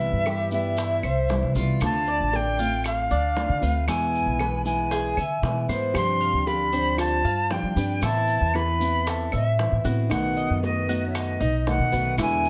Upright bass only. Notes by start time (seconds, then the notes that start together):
Already playing: C2
0.12 G2
1.03 C2
1.43 C3
1.55 C2
1.81 D2
2.20 A1
3.11 D2
3.49 D3
3.62 D2
3.87 E2
4.26 B1
5.17 D3
5.42 B2
5.68 G#2
5.94 G2
6.33 D2
7.24 G2
7.63 G3
7.76 G2
8.02 A2
8.41 E2
9.33 A2
9.72 A2
9.84 A2
10.11 B1
10.50 F#2
11.40 B1
11.79 B2
11.92 B1
12.18 E2